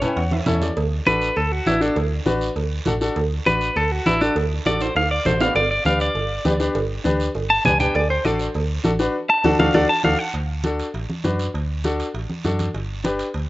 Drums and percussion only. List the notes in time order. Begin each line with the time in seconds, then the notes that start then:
0.02 low conga, high timbale, short guiro
0.17 high conga, high timbale, long guiro
0.31 high conga, high timbale
0.46 high conga, low conga, low timbale, short guiro
0.61 high conga, low timbale, short guiro
0.77 cowbell, high conga, long guiro
1.06 high conga, short guiro
1.22 short guiro
1.36 cowbell, high conga, long guiro
1.66 high conga, low timbale, short guiro
1.82 short guiro
1.96 cowbell, high conga, long guiro
2.26 high conga, short guiro
2.41 short guiro
2.56 cowbell, high conga, long guiro
2.86 high conga, low conga, short guiro
3.01 short guiro
3.16 cowbell, high conga, long guiro
3.46 high conga, short guiro
3.61 short guiro
3.76 cowbell, high conga, long guiro
4.06 high conga, short guiro
4.21 short guiro
4.36 cowbell, high conga, long guiro
4.66 high conga, high timbale, short guiro
4.81 high timbale, short guiro
4.96 cowbell, high conga, high timbale, long guiro
5.25 high conga, low conga, low timbale, short guiro
5.40 low timbale, short guiro
5.56 cowbell, high conga, long guiro
5.85 high conga, short guiro
6.00 short guiro
6.15 cowbell, high conga, long guiro
6.45 high conga, low timbale, short guiro
6.60 short guiro
6.75 cowbell, high conga, long guiro
7.05 high conga, short guiro
7.20 short guiro
7.35 cowbell, high conga, long guiro
7.65 high conga, low conga, low timbale, short guiro
7.80 low conga, short guiro
7.95 cowbell, high conga, long guiro
8.25 high conga, short guiro
8.39 short guiro
8.54 cowbell, high conga, long guiro
8.84 high conga, short guiro
8.99 short guiro
9.44 high conga, high timbale, long guiro
9.59 high conga, high timbale, long guiro
9.74 high conga, high timbale, long guiro
10.04 high conga, high timbale, long guiro
10.34 high conga, high timbale, long guiro
10.64 high conga, high timbale, short guiro
10.79 high timbale, short guiro
10.94 high conga, high timbale, long guiro
11.10 high conga
11.24 high conga, high timbale, short guiro
11.39 high timbale, short guiro
11.55 high conga, high timbale, long guiro
11.84 high conga, high timbale, short guiro
12.00 high timbale, short guiro
12.15 high conga, high timbale, long guiro
12.30 high conga
12.44 high conga, high timbale, short guiro
12.59 high conga, high timbale, short guiro
12.74 high conga, high timbale, long guiro
13.04 high conga, high timbale, short guiro
13.19 high timbale, short guiro
13.34 high conga, high timbale, long guiro